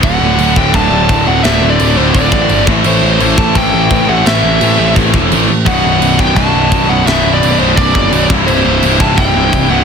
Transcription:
<<
  \new Staff \with { instrumentName = "Lead electric guitar" } { \time 4/4 \key d \mixolydian \tempo 4 = 171 fis''4. g''8 a''4. fis''8 | e''8. d''8. c''8 d''4. r8 | c''4 c''8 a''8 g''4. fis''8 | e''2 r2 |
fis''4. g''8 a''4. fis''8 | e''8. d''8. c''8 d''4. r8 | c''4. a''8 g''4. fis''8 | }
  \new Staff \with { instrumentName = "Overdriven electric guitar" } { \clef bass \time 4/4 \key d \mixolydian <d, a, d fis a d'>4. <d, a, d fis a d'>2~ <d, a, d fis a d'>8 | <d, a, d fis a d'>4. <d, a, d fis a d'>2 <a, e a c' e' a'>8~ | <a, e a c' e' a'>4 <a, e a c' e' a'>2~ <a, e a c' e' a'>8 <a, e a c' e' a'>8~ | <a, e a c' e' a'>4 <a, e a c' e' a'>2~ <a, e a c' e' a'>8 r8 |
<b,, fis, b, fis d'>4. <b,, fis, b, fis d'>2~ <b,, fis, b, fis d'>8 | <b,, fis, b, fis d'>4. <b,, fis, b, fis d'>2 <c, g, c e e'>8~ | <c, g, c e e'>4 <c, g, c e e'>2~ <c, g, c e e'>8 <c, g, c e e'>8 | }
  \new Staff \with { instrumentName = "Distorted electric guitar" } { \clef bass \time 4/4 \key d \mixolydian <d, a, d>4. <d, a, d>2~ <d, a, d>8 | <d, a, d>4. <d, a, d>2 <a, e a>8~ | <a, e a>4 <a, e a>2~ <a, e a>8 <a, e a>8~ | <a, e a>4 <a, e a>2~ <a, e a>8 r8 |
<b,, fis, b,>4. <b,, fis, b,>2~ <b,, fis, b,>8 | <b,, fis, b,>4. <b,, fis, b,>2 <c, g, c>8~ | <c, g, c>4 <c, g, c>2~ <c, g, c>8 <c, g, c>8 | }
  \new Staff \with { instrumentName = "Distorted electric guitar" } { \clef bass \time 4/4 \key d \mixolydian <d, a, d>2 <d, a, d>2 | <d, a, d>2 <d, a, d>4. <a, e a>8~ | <a, e a>4. <a, e a>2 <a, e a>8~ | <a, e a>4. <a, e a>2 r8 |
<b,, fis, b,>2 <b,, fis, b,>2 | <b,, fis, b,>2 <b,, fis, b,>4. <c, g, c>8~ | <c, g, c>4. <c, g, c>2 <c, g, c>8 | }
  \new Staff \with { instrumentName = "Picked electric bass" } { \clef bass \time 4/4 \key d \mixolydian d,,8 d,,8 d,,8 d,,8 d,,8 d,,8 d,,8 d,,8 | d,,8 d,,8 d,,8 d,,8 d,,8 a,,8 g,,8 a,,8 | a,,8 a,,8 a,,8 a,,8 a,,8 a,,8 a,,8 a,,8 | a,,8 a,,8 a,,8 a,,8 a,,8 e,,8 a,,8 a,,8 |
b,,,8 b,,,8 b,,,8 b,,,8 b,,,8 b,,,8 b,,,8 b,,,8 | b,,,8 b,,,8 b,,,8 b,,,8 b,,,8 fis,,8 b,,,8 c,,8 | c,,8 c,,8 c,,8 c,,8 c,,8 c,,8 c,,8 c,,8 | }
  \new DrumStaff \with { instrumentName = "Drums" } \drummode { \time 4/4 <cymc bd>4 cymc8 bd8 <cymc bd>4 <cymc bd>4 | <cymc sn>4 cymc4 <cymc bd>8 bd8 cymc8 bd8 | cymc4 cymc8 bd8 <cymc bd>4 <cymc bd>4 | <cymc sn>4 cymc4 <cymc bd>8 bd8 cymc4 |
<cymc bd>4 cymc8 bd8 <cymc bd>4 <cymc bd>4 | <cymc sn>4 cymc4 <cymc bd>8 bd8 cymc8 bd8 | cymc4 cymc8 bd8 <cymc bd>4 <cymc bd>4 | }
>>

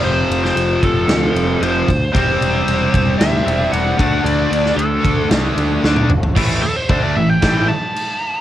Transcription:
<<
  \new Staff \with { instrumentName = "Lead electric guitar" } { \time 4/4 \key a \minor \tempo 4 = 114 c''8. c''8. a'4. c''4 | c''2 e''4 fis''4 | d''4 a'4 r2 | r8 a'16 c''8 d''16 e''16 g''8. a''4. | }
  \new Staff \with { instrumentName = "Overdriven electric guitar" } { \clef bass \time 4/4 \key a \minor <f, c f>2 <f, c f>8 <f, c f>4 r8 | <c g c'>2~ <c g c'>8 <c g c'>8 <c g c'>8 <d a d'>8~ | <d a d'>2 <d a d'>8 <d a d'>4 r8 | <a, e a>8 r8 <d a d'>8 <a, e>8 <a, e a>8 r4. | }
  \new Staff \with { instrumentName = "Distorted electric guitar" } { \clef bass \time 4/4 \key a \minor <f, c f>4. <f, c f>2 r8 | <c g c'>2 <c g c'>4. <d a d'>8~ | <d a d'>4. <d a d'>2 r8 | <a, e a>8 r8 <d a d'>8 <a, e>8 <a, e a>8 r4. | }
  \new Staff \with { instrumentName = "Overdriven electric guitar" } { \clef bass \time 4/4 \key a \minor <f, c f>2. <f, c f>8 r8 | <c g c'>2.~ <c g c'>8 <d a d'>8~ | <d a d'>2. <d a d'>8 r8 | <a, e a>8 r8 <d a d'>8 <a, e>8 <a, e a>8 r4. | }
  \new Staff \with { instrumentName = "Picked electric bass" } { \clef bass \time 4/4 \key a \minor f,,8 f,,8 f,,8 f,,8 d,8 f,,8 f,,8 d,8 | e,,8 e,,8 e,,8 e,,8 d,8 e,,8 e,,8 d,8 | d,8 d,8 d,8 d,8 c,8 d,8 d,8 g,,8 | a,,8 r8 d,8 a,,8 a,,8 r4. | }
  \new DrumStaff \with { instrumentName = "Drums" } \drummode { \time 4/4 r8 cymr16 sn16 cymr8 <bd cymr>8 <cymr sn>8 cymr8 cymr8 <bd cymr>8 | <bd cymr>8 cymr8 cymr8 <bd cymr>8 <cymr sn>8 cymr8 cymr8 <bd cymr>8 | cymr8 cymr16 sn16 cymr8 <bd cymr>8 <cymr sn>8 cymr8 sn16 tommh16 toml16 tomfh16 | <cymc bd>4 <cymc bd>4 <cymc bd sn>4 cymc4 | }
>>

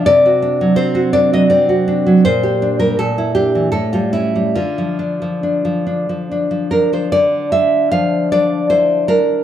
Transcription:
\new Staff \with { instrumentName = "Nylon-string guitar" } { \time 3/4 \key d \minor \tempo 4 = 78 << { d''4 c''8 d''16 ees''16 d''8 r8 | c''8. bes'16 a'8 g'8 a'16 f'16 e'8 | f'2 r8 bes'16 c''16 | d''8 e''8 f''8 d''8 c''8 bes'8 | } \\ { c16 fis'16 d'16 fis16 c'16 fis'16 d'16 fis16 c'16 fis'16 d'16 fis16 | bes,16 g'16 d'16 g16 bes,16 e'16 d'16 e16 a,16 g16 cis'16 g16 | d16 f16 d'16 f16 d'16 f16 d'16 f16 d'16 f16 d'16 f16 | d8 d'8 f8 d'8 e'8 d'8 | } >> }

